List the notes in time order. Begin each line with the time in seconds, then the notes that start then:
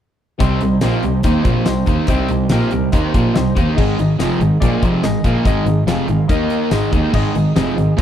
0.38 C2 C3 G3 C4 D#4 G4 C5, kick, closed hi-hat
0.61 C2 C3 G3, closed hi-hat
0.81 A#1 A#2 F3 A#3 D#4 G4 C5, snare, closed hi-hat, tambourine
1.03 C2 C3 G3, closed hi-hat
1.23 D#2 D#3 A#3 D#4 G4 C5, kick, closed hi-hat
1.44 A#1 A#2 F3 A#3, kick, closed hi-hat
1.65 C2 C3 G3 D#4 G4 C5, snare, closed hi-hat, tambourine
1.86 D#2 D#3 A#3 D#4, kick, closed hi-hat
2.07 C2 C3 G3 C4 D#4 G4 C5, kick, closed hi-hat
2.28 C2 C3 G3, closed hi-hat
2.49 A#1 A#2 F3 A#3 D#4 G4 A#4, snare, closed hi-hat, tambourine
2.71 C2 C3 G3, closed hi-hat
2.92 D#2 D#3 A#3 D#4 G4 C5, kick, closed hi-hat
3.14 A#1 A#2 F3 A#3, kick, closed hi-hat
3.34 C2 C3 G3 D#4 G4 C5, snare, closed hi-hat, tambourine
3.55 D#2 D#3 A#3 D#4, kick, closed hi-hat
3.76 G#1 G#2 D#3 G#3 D#4 G#4 D#5, kick, crash
3.97 G#1 G#2 D#3, closed hi-hat
4.18 F1 F2 C3 F3 D#4 G#4 D#5, snare, closed hi-hat, tambourine
4.40 G#1 G#2 D#3, closed hi-hat
4.60 A#1 A#2 F3 A#3 D#4 G#4 D5, kick, closed hi-hat
4.82 F1 F2 C3 F3, kick, closed hi-hat
5.03 G#1 G#2 D#3 D#4 G#4 D#5, snare, closed hi-hat, tambourine
5.24 A#1 A#2 F3 A#3, kick, closed hi-hat
5.45 G#1 G#2 D#3 G#3 D#4 G#4 D#5, kick, closed hi-hat
5.65 G#1 G#2 D#3, closed hi-hat
5.87 F1 F2 C3 F3 D#4 G#4 F5, snare, closed hi-hat, tambourine
6.08 G#1 G#2 D#3, closed hi-hat
6.28 D#2 D#3 A#3 D#4 A#4 D#5, kick, closed hi-hat
6.50 closed hi-hat
6.71 G#1 G#2 D#3 G#3 D#4 G#4 D#5, snare, closed hi-hat, tambourine
6.92 D#2 D#3 A#3 D#4, kick, closed hi-hat
7.14 G#1 G#2 D#3 G#3 D#4 G#4 D#5, kick, crash
7.35 G#1 G#2 D#3, closed hi-hat
7.55 F1 F2 C3 F3 D#4 G#4 D#5, snare, closed hi-hat, tambourine
7.77 G#1 G#2 D#3, closed hi-hat
7.97 A#1 A#2 F3 A#3 D#4 G#4 D#5, kick, closed hi-hat